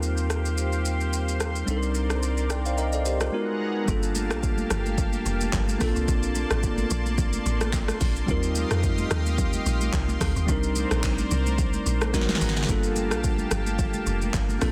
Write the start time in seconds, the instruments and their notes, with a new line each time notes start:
Already playing: analog synth bass D#2, tine electric piano G3 C4 D#4 F4 A#4, analog synth pad G4 C5 F5 C6
0.03 shaker
0.17 shaker
0.30 cross-stick, shaker
0.45 shaker
0.58 shaker
0.72 shaker
0.85 shaker
1.00 shaker
1.13 shaker
1.29 shaker
1.40 cross-stick, shaker
1.56 shaker
1.66 analog synth bass C2, tine electric piano G3 C4 D4 D#4, analog synth pad A#4 D5, shaker
1.71 tine electric piano A4
1.77 tine electric piano A#4
1.82 shaker
1.95 shaker
2.10 cross-stick, shaker
2.23 shaker
2.37 shaker
2.50 tine electric piano D5 G5, cross-stick, shaker
2.66 tine electric piano C5 F5, shaker
2.78 tine electric piano A#4 D#5, shaker
2.93 tine electric piano A4 D5, shaker
3.05 tine electric piano G4 C5, shaker
3.20 tine electric piano F4 A#4, cross-stick, shaker
3.32 tine electric piano G#3 B3 D#4 F#4 A#4, analog synth pad B3 G#4 F#5 A#5
3.86 log drum bass G1, tine electric piano G3 A#3 D4 F4, analog synth pad A#3 G4 F5 A5, kick, shaker
3.91 tine electric piano A4
4.03 shaker
4.15 high conga, shaker
4.31 log drum bass A#1, cross-stick, shaker
4.43 kick, shaker
4.58 high conga, shaker
4.70 log drum bass G1, cross-stick, low conga, shaker
4.86 high conga, shaker
4.98 kick, low conga, shaker
5.13 high conga, shaker
5.26 log drum bass F1, high conga, shaker
5.41 high conga, shaker
5.53 log drum bass G1, kick, clap, low conga, shaker
5.68 high conga, shaker
5.78 log drum bass A#1, tine electric piano A#3 C4 D4 F4, analog synth pad D5 C6, kick, cross-stick, open hi-hat, low conga, shaker
5.83 tine electric piano A4
5.96 log drum bass C2, shaker
6.08 log drum bass A#1, kick, shaker
6.23 shaker
6.35 high conga, shaker
6.51 log drum bass A1, cross-stick, shaker
6.63 kick, shaker
6.78 high conga, shaker
6.90 log drum bass A#1, low conga, shaker
7.06 high conga, shaker
7.18 kick, low conga, shaker
7.33 high conga, shaker
7.46 log drum bass A1, high conga, shaker
7.61 cross-stick, high conga, shaker
7.73 kick, clap, low conga, shaker
7.88 cross-stick, high conga, shaker
8.00 log drum bass A#1, kick, open hi-hat, low conga, shaker
8.16 shaker
8.26 log drum bass D#2, tine electric piano G3 C4 D#4 F4, analog synth pad G4 D#5 F5, kick, shaker
8.31 tine electric piano A#4
8.43 shaker
8.55 high conga, shaker
8.71 log drum bass F2, cross-stick, shaker
8.83 kick, shaker
8.98 high conga, shaker
9.11 log drum bass D#2, cross-stick, low conga, shaker
9.26 high conga, shaker
9.38 kick, low conga, shaker
9.53 high conga, shaker
9.66 log drum bass A#1, high conga, shaker
9.81 high conga, shaker
9.93 log drum bass C2, kick, clap, low conga, shaker
10.08 high conga, shaker
10.20 log drum bass D2, kick, cross-stick, open hi-hat, low conga, shaker
10.36 log drum bass D#2, shaker
10.46 log drum bass C2, tine electric piano G3 C4 D4 D#4, analog synth pad A#4 C5 D5, kick, shaker
10.51 tine electric piano A#4
10.63 shaker
10.76 high conga, shaker
10.91 log drum bass A#1, cross-stick, shaker
11.04 kick, clap, shaker
11.18 high conga, shaker
11.31 log drum bass C2, low conga, shaker
11.46 high conga, shaker
11.58 kick, low conga, shaker
11.73 high conga, shaker
11.86 log drum bass A#1, high conga, shaker
12.01 cross-stick, high conga, shaker
12.13 tine electric piano G#3 B3 D#4 F#4 A#4, analog synth pad B3 G#4 F#5 A#5, kick, snare, low conga, shaker
12.21 snare
12.29 snare, high conga, shaker
12.35 snare
12.41 log drum bass G#1, open hi-hat, low conga, shaker
12.49 snare
12.57 snare, shaker
12.63 tine electric piano G3, snare
12.68 log drum bass G1, tine electric piano A#3 D4 F4 A4, analog synth pad A#3 G4 F5 A5, kick, shaker
12.83 shaker
12.96 high conga, shaker
13.11 log drum bass A#1, cross-stick, shaker
13.24 kick, shaker
13.38 high conga, shaker
13.51 log drum bass G1, cross-stick, low conga, shaker
13.67 high conga, shaker
13.79 kick, low conga, shaker
13.94 high conga, shaker
14.07 log drum bass F1, high conga, shaker
14.21 high conga, shaker
14.34 log drum bass G1, kick, clap, low conga, shaker
14.49 high conga, shaker
14.59 log drum bass A#1, tine electric piano A#3 C4 D4 F4, analog synth pad D5 A5 C6, kick, cross-stick, open hi-hat, low conga, shaker
14.64 tine electric piano A4